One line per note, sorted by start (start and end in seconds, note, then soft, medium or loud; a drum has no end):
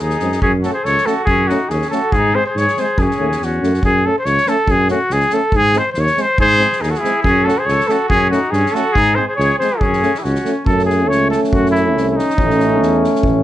0.00 0.19 D#2 medium
0.00 0.42 D#4 medium
0.00 0.41 G#4 medium
0.10 snare soft
0.19 0.40 F#2 medium
0.19 0.30 G#3 medium
0.19 0.30 C4 soft
0.19 snare soft
0.32 snare soft
0.42 0.67 F#2 medium
0.42 0.52 C#4 medium
0.42 0.52 G#4 loud
0.42 kick medium
0.62 0.72 A3 medium
0.62 0.72 C#4 medium
0.62 0.73 F#4 medium
0.62 0.73 A4 medium
0.62 snare soft
0.74 0.85 G#4 medium
0.74 0.87 C5 medium
0.84 0.97 C#2 medium
0.84 1.07 A4 medium
0.84 1.08 C#5 loud
0.84 snare soft
0.97 snare soft
1.05 1.14 A3 medium
1.05 1.15 C#4 soft
1.05 1.27 F#4 medium
1.05 1.24 A4 medium
1.05 snare soft
1.25 1.51 F#2 medium
1.25 1.52 C#4 medium
1.25 1.49 G#4 loud
1.25 kick medium
1.48 1.58 A3 medium
1.48 1.58 C#4 medium
1.48 1.73 D#4 medium
1.48 1.71 F#4 medium
1.48 snare soft
1.69 1.82 D#2 medium
1.69 1.92 C#4 medium
1.69 1.90 G#4 medium
1.69 snare soft
1.81 snare soft
1.91 2.00 A3 medium
1.91 2.00 C#4 medium
1.91 2.18 F#4 medium
1.91 2.13 A4 medium
1.91 snare soft
2.12 2.36 G#2 medium
2.12 2.37 G#4 loud
2.12 kick medium
2.17 2.37 D#4 loud
2.33 2.42 G#3 medium
2.33 2.42 C4 medium
2.33 2.47 G#4 medium
2.33 2.46 C5 loud
2.46 2.59 G#4 medium
2.46 2.59 C5 medium
2.55 2.67 G#2 medium
2.55 2.82 G#4 medium
2.55 2.81 C#5 medium
2.55 snare soft
2.67 snare soft
2.77 2.86 G#3 medium
2.77 2.86 C4 medium
2.77 3.01 C5 medium
2.77 snare soft
2.82 3.05 G#4 medium
2.98 3.10 F#2 loud
2.98 3.46 G#4 medium
2.98 kick medium
3.03 3.44 C#4 medium
3.10 snare soft
3.18 3.39 D#2 medium
3.18 3.27 A3 medium
3.18 3.27 C#4 medium
3.31 snare soft
3.41 3.60 E2 medium
3.41 3.85 C#4 medium
3.41 3.84 F#4 medium
3.41 snare soft
3.62 3.81 F#2 medium
3.62 3.71 A3 medium
3.62 3.71 C#4 soft
3.62 snare soft
3.73 snare soft
3.83 4.07 F#2 medium
3.83 4.07 G#4 loud
3.83 kick medium
4.05 4.13 A3 medium
4.05 4.14 C#4 medium
4.05 4.17 A4 medium
4.19 4.27 C5 medium
4.25 4.37 C#2 loud
4.25 4.50 C#5 loud
4.25 snare soft
4.38 snare soft
4.46 4.56 A3 medium
4.46 4.56 C#4 medium
4.46 4.72 A4 loud
4.46 snare soft
4.68 4.91 F#2 loud
4.68 4.90 G#4 loud
4.68 kick medium
4.88 4.98 A3 medium
4.88 4.98 C#4 medium
4.88 5.14 F#4 medium
4.88 snare soft
5.10 5.23 C#2 loud
5.10 5.35 G#4 loud
5.10 snare soft
5.20 snare soft
5.30 5.40 A3 medium
5.30 5.41 C#4 medium
5.30 5.58 A4 loud
5.30 snare soft
5.52 5.78 G#2 medium
5.52 kick medium
5.56 5.80 G#4 loud
5.73 5.83 G#3 medium
5.73 5.83 C4 medium
5.73 snare soft
5.78 5.88 C5 medium
5.92 6.01 C5 medium
5.92 snare soft
5.97 6.08 D#2 loud
5.97 6.23 C#5 loud
6.06 snare soft
6.16 6.25 G#3 medium
6.16 6.25 C4 medium
6.16 snare soft
6.22 6.40 C5 loud
6.38 6.62 G#2 loud
6.38 6.83 G#4 loud
6.38 6.83 C5 loud
6.38 kick medium
6.58 6.67 G#3 medium
6.58 6.68 C4 medium
6.58 snare soft
6.72 snare soft
6.81 6.93 D#2 medium
6.81 6.92 D#4 medium
6.81 6.92 G#4 medium
6.81 snare soft
6.90 7.01 F#4 medium
6.90 6.98 A4 medium
6.90 snare soft
6.97 7.26 E4 medium
6.97 7.23 G#4 loud
7.03 7.12 G#3 medium
7.03 7.12 C4 soft
7.03 snare soft
7.23 7.48 F#2 medium
7.23 7.46 G#4 loud
7.23 kick medium
7.28 7.49 C#4 medium
7.44 7.53 A3 medium
7.44 7.54 C#4 medium
7.44 7.61 F#4 medium
7.44 7.60 A4 medium
7.44 snare soft
7.58 7.73 G#4 medium
7.58 7.67 C5 medium
7.66 7.79 C#2 medium
7.66 7.90 C#5 loud
7.66 snare soft
7.72 7.93 A4 medium
7.80 snare soft
7.88 7.96 A3 medium
7.88 7.97 C#4 soft
7.88 8.11 F#4 medium
7.88 8.09 A4 medium
7.88 snare soft
8.09 8.34 F#2 medium
8.09 8.32 C#4 medium
8.09 8.29 G#4 loud
8.09 kick medium
8.30 8.39 A3 medium
8.30 8.39 C#4 medium
8.30 8.56 D#4 medium
8.30 8.53 F#4 medium
8.30 snare soft
8.51 8.64 G2 loud
8.51 8.76 C#4 medium
8.51 8.74 G#4 medium
8.51 snare soft
8.66 snare soft
8.72 8.82 A3 medium
8.72 8.83 C#4 medium
8.72 8.98 F#4 medium
8.72 8.94 A4 medium
8.72 snare soft
8.92 9.19 G#2 medium
8.92 9.17 G#4 loud
8.92 kick medium
8.97 9.18 D#4 medium
9.15 9.24 G#3 medium
9.15 9.26 C4 medium
9.15 9.27 G#4 medium
9.15 9.27 C5 medium
9.28 9.37 G#4 medium
9.28 9.35 C5 medium
9.36 9.51 C#2 loud
9.36 9.58 G#4 medium
9.36 9.57 C#5 loud
9.36 snare soft
9.59 9.70 G#3 medium
9.59 9.68 C4 medium
9.59 9.82 G#4 medium
9.59 9.81 C5 medium
9.59 snare soft
9.79 10.05 F#2 medium
9.79 10.20 C#4 medium
9.79 10.16 G#4 loud
9.79 kick medium
9.93 snare soft
10.02 10.11 A3 medium
10.02 10.11 C#4 medium
10.02 snare soft
10.14 10.25 E4 soft
10.14 10.24 G#4 medium
10.14 snare soft
10.23 10.36 C#2 loud
10.23 10.67 C#4 medium
10.23 10.53 F#4 medium
10.23 snare soft
10.35 snare soft
10.44 10.53 A3 medium
10.44 10.55 C#4 soft
10.44 snare soft
10.66 11.11 F#2 loud
10.66 12.33 A3 medium
10.66 12.34 C#4 medium
10.66 10.85 A4 medium
10.66 kick medium
10.79 snare soft
10.85 11.10 G#4 medium
10.90 snare soft
11.09 11.33 C#2 medium
11.09 11.30 C#5 loud
11.09 snare soft
11.30 11.40 A4 medium
11.30 snare soft
11.44 snare soft
11.52 11.97 F#2 medium
11.52 11.70 F#4 medium
11.52 kick medium
11.65 snare soft
11.71 12.09 E4 medium
11.71 snare soft
11.96 12.19 C2 medium
11.96 snare soft
12.09 12.18 E4 medium
12.17 13.24 D#4 loud
12.17 snare soft
12.30 snare soft
12.37 12.84 A1 medium
12.37 13.43 A3 loud
12.37 13.43 C#4 medium
12.37 kick loud
12.50 snare soft
12.60 snare soft
12.82 13.05 E2 medium
12.82 snare soft
13.04 snare soft
13.15 snare soft
13.23 13.43 A1 loud
13.23 kick medium